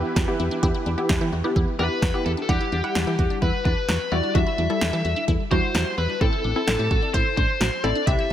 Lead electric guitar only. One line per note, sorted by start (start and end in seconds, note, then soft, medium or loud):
1.79 2.25 B4 medium
2.26 2.31 A4 medium
2.42 2.49 A4 medium
2.49 3.38 G4 medium
3.42 3.64 B4 medium
3.65 4.13 B4 loud
4.12 4.33 D5 medium
4.35 5.24 E5 medium
5.51 5.95 C5 medium
5.98 6.21 B4 medium
6.21 7.14 A4 medium
7.14 7.36 C5 medium
7.37 7.85 C5 loud
7.84 8.07 D5 medium
8.07 8.33 E5 loud